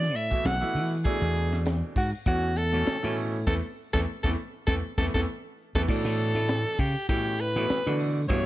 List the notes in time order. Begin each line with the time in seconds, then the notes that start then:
Already playing: E3 D5
0.02 snare
0.14 A2 A3 E4 E5, closed hi-hat
0.30 B2 E3 A3 E4, muted slap bass stroke, kick
0.45 B1 F#5, snare, closed hi-hat
0.60 B2 E3 A3 E4, muted slap bass stroke
0.75 E3, open hi-hat
1.05 B2 E3 A3 D4 G#4, kick, closed hi-hat
1.22 E2
1.36 closed hi-hat
1.52 E2, snare
1.66 snare, closed hi-hat
1.96 G#2 F#4, kick, open hi-hat
2.26 E2 B2 E3 A3 C#4 F#4, kick, closed hi-hat
2.55 A3 D4 A4, closed hi-hat
2.72 E2 B2 E3 A3 C#4
2.86 muted slap bass stroke, snare, closed hi-hat
3.03 A2 B2 E3 A3 C#4
3.17 open hi-hat
3.47 E2 E3 A3 B3 A4, kick, snare
3.93 E2 E3 A3 B3 A4, kick, snare
4.23 E2 E3 A3 B3 A4, kick, snare
4.67 E2 E3 A3 B3 A4, kick, snare
4.98 E2 E3 A3 B3 A4, kick, snare
5.14 E2 E3 A3 B3 A4, kick, snare
5.75 E2 E3 A3 B3 A4, kick, snare
5.87 A2 B2 E3 A3 D4 A4, kick, crash
6.05 A2
6.18 closed hi-hat
6.35 A2, snare
6.48 snare, closed hi-hat
6.79 C#3 G4, kick, open hi-hat
7.09 A2 B2 E3 A3 C#4 G4, kick, closed hi-hat
7.39 A3 D4 B4, closed hi-hat
7.56 A2 B2 E3 A3 B3
7.69 muted slap bass stroke, snare, closed hi-hat
7.86 B2 D3 E3 A3 D4, snare
8.00 open hi-hat
8.29 G2 B2 E3 A3 B3 C#5, kick, closed hi-hat